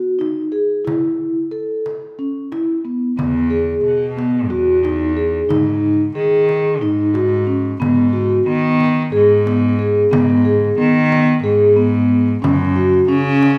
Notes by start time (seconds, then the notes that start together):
Already playing: F#4
0.19 D#4, frame drum
0.52 G#4
0.85 E4, frame drum
1.51 A4
1.86 frame drum
2.19 C#4
2.52 E4, frame drum
2.85 B3
3.18 E2 B3, frame drum
3.50 G#4
3.84 B2
4.17 B3, frame drum
4.50 E2 F#4
4.84 D#4, frame drum
5.17 G#4
5.49 G#2 D#4, frame drum
6.15 D#3 G#4
6.49 frame drum
6.81 G#2 D#4, frame drum
7.14 F#4, frame drum
7.47 C#4
7.80 G#2 B3, frame drum
8.13 F#4, frame drum
8.46 D#3 B3, frame drum
8.81 frame drum
9.12 G#2 G#4
9.46 B3, frame drum
9.79 G#4
10.11 G#2 B3, frame drum
10.45 G#4, frame drum
10.78 D#3 B3, frame drum
11.12 frame drum
11.44 G#2 G#4
11.76 B3
12.42 F#2 C#4, frame drum
12.76 F#4, frame drum
13.09 C#3 C#4, frame drum
13.43 frame drum